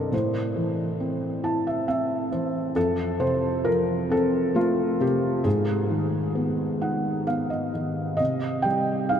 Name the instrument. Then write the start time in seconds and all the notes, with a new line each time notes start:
felt piano
Already playing: G2 C3 D#3 A4 A#4 C5 D5
0.12 A2 C5
0.56 E3
1.00 C4
1.44 E4 A5
1.67 E5
1.88 C4 E5
2.32 E3 C5
2.75 F2 A4
3.20 C3 C5
3.65 F3 A#4
4.10 C4 A4
4.55 A3 F4
5.00 C3 G4
5.44 G#2 G#4
5.90 D#3
6.35 B3
6.82 D#4 F#5
7.27 B3 F5
7.50 D#5
7.74 D#3
8.17 C3 D#5
8.62 G3 G5
9.09 D#4 F5